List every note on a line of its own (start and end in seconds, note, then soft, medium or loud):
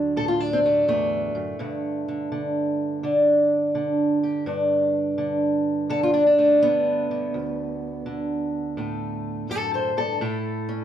0.00 0.87 D2 medium
0.00 1.59 D3 medium
0.00 1.60 F#3 soft
0.00 0.17 D4 loud
0.16 1.60 A2 medium
0.16 0.28 A4 loud
0.28 0.40 F4 medium
0.40 1.36 D4 medium
0.53 0.58 C4 medium
0.66 0.87 A3 medium
0.88 1.34 E2 medium
0.88 3.03 A3 medium
1.35 1.59 F#2 medium
1.59 4.44 G2 medium
1.59 2.07 D3 medium
2.08 2.30 D3 soft
2.32 3.02 D3 medium
3.03 3.74 D3 medium
3.03 4.47 D4 soft
3.75 5.17 D3 medium
4.23 4.44 G4 soft
4.46 7.31 G2 medium
4.46 6.12 D4 medium
5.18 5.88 D3 medium
5.90 6.61 D3 medium
5.90 6.03 A4 loud
6.03 6.13 F4 medium
6.14 6.25 D4 medium
6.27 7.04 D4 medium
6.38 7.34 A3 medium
6.62 7.10 D3 medium
6.62 9.50 B3 loud
7.11 8.05 D3 soft
7.34 9.49 D2 medium
8.06 10.21 D3 medium
8.77 10.20 A2 medium
8.77 10.21 A3 soft
9.49 9.97 F#2 medium
9.49 9.73 C4 medium
9.49 9.73 A4 loud
9.74 9.89 A4 medium
9.74 9.98 C5 medium
9.97 10.21 G2 medium
9.97 10.84 A4 loud
10.21 10.84 A2 medium
10.21 10.84 E4 medium
10.69 10.84 C#4 medium